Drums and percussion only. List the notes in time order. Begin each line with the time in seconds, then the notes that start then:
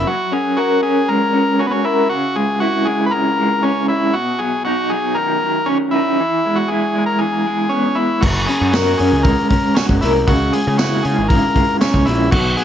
8.23 kick, crash
8.48 open hi-hat
8.73 snare, open hi-hat, tambourine
8.99 open hi-hat
9.25 kick, open hi-hat
9.50 kick, open hi-hat
9.76 snare, open hi-hat, tambourine
9.89 kick
10.02 snare, open hi-hat
10.28 kick, open hi-hat
10.53 open hi-hat
10.79 snare, open hi-hat, tambourine
11.05 open hi-hat
11.30 kick, open hi-hat
11.56 kick, open hi-hat
11.81 snare, open hi-hat, tambourine
11.94 kick
12.07 snare, open hi-hat
12.32 kick, crash
12.58 open hi-hat